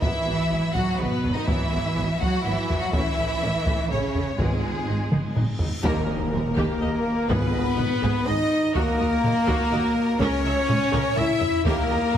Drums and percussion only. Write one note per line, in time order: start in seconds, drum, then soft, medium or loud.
0.02 taiko loud
0.75 taiko medium
1.23 taiko low soft
1.47 taiko loud
2.21 taiko medium
2.69 taiko low soft
2.93 taiko loud
3.66 taiko medium
4.15 taiko low soft
4.39 taiko loud
5.12 taiko mid medium
5.36 taiko low-mid medium
5.59 taiko low medium
5.84 taiko loud
6.33 taiko low-mid medium
6.57 taiko medium
7.30 taiko loud
7.78 taiko low-mid medium
8.03 taiko medium
8.75 taiko loud
9.23 taiko low-mid medium
9.48 taiko loud
10.20 taiko loud
10.69 taiko low-mid medium
10.93 taiko low-mid loud
11.17 taiko low-mid medium
11.41 taiko low loud
11.65 taiko loud
12.14 taiko low-mid medium